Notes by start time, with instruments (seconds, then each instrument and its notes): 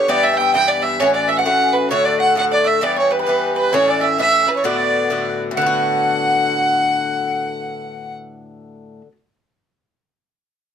Already playing: fiddle C#5
0.08 bouzouki G2 E3 B3 G4, fiddle D5, mandolin D5, flute D5
0.23 fiddle E5, mandolin E5
0.33 mandolin E5, fiddle G5
0.39 mandolin E5, flute G5
0.54 bouzouki G2 E3 B3 G4, mandolin G5, fiddle G5, flute G5
0.68 fiddle D5, mandolin D5, flute D5
0.82 mandolin E5, fiddle E5, flute E5
1.00 bouzouki A2 E3 C#4 F#4, mandolin C#5, fiddle C#5, flute C#5
1.13 fiddle D5, mandolin D5, flute D5
1.27 fiddle E5, mandolin E5, flute E5
1.37 fiddle F#5, flute F#5, mandolin F#5
1.43 bouzouki A2 E3 C#4 F#4, flute G5
1.53 flute F#5
1.72 flute B4, fiddle B4, mandolin B4
1.90 bouzouki A2 D3 A3 F#4, fiddle C#5, mandolin C#5, flute C#5
2.05 fiddle D5, flute D5, mandolin D5
2.19 flute F#5, fiddle F#5, mandolin F#5
2.35 bouzouki A2 D3 A3 F#4, flute F#5, mandolin F#5, fiddle F#5
2.51 mandolin D5, fiddle D5, flute D5
2.64 mandolin E5, fiddle E5, flute E5
2.81 bouzouki G2 E3 B3 G4, mandolin D5, flute D5, fiddle D5
2.96 mandolin C#5, flute C#5, fiddle C#5
3.11 mandolin B4, flute B4, fiddle B4
3.19 mandolin B4, flute B4, fiddle B4
3.27 bouzouki G2 E3 B3 G4
3.55 flute B4, mandolin B4, fiddle B4
3.72 bouzouki A2 E3 C#4 E4, flute C#5, mandolin C#5, fiddle C#5
3.86 flute D5, mandolin D5, fiddle D5
4.00 flute E5, mandolin E5, fiddle E5
4.17 bouzouki A2 E3 C#4 E4, flute E5, mandolin E5, fiddle E5
4.46 bouzouki E3 C#4 E4, mandolin B4, fiddle B4
4.55 flute C#5, fiddle C#5, mandolin C#5
4.63 bouzouki A2 D3 B3 F#4, flute D5, mandolin D5, fiddle D5
5.10 bouzouki A2 D3 B3 F#4
5.51 bouzouki A2, flute F#5
5.55 bouzouki D3, fiddle F#5, mandolin F#5
5.62 bouzouki B3
5.66 bouzouki F#4